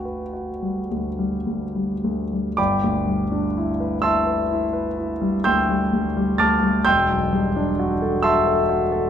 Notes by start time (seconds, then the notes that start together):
Already playing: G1 G3 D4 F#4 B4 G5
0.05 B4
0.33 F#4
0.62 G3
0.91 D2
1.19 G3
1.47 D2
1.76 G3
2.04 D2
2.33 G3
2.57 G1 D5 G5 B5 D6
2.84 D2
3.07 G3
3.32 D4
3.57 E4
3.80 B4
4.02 E4 E5 A5 C6 E6
4.26 B4
4.50 E4
4.73 B4
4.97 E4
5.21 G3
5.44 D2 G5 C6 E6 G6
5.69 G3
5.93 D2
6.17 G3
6.38 D2 A5 D6 F6 A6
6.63 G3
6.85 E1 G5 C6 E6 G6
7.10 B1
7.33 G3
7.56 D4
7.80 F#4
8.02 A4
8.22 F#4 E5 A5 C6 E6
8.47 A4
8.69 F#4
8.92 A4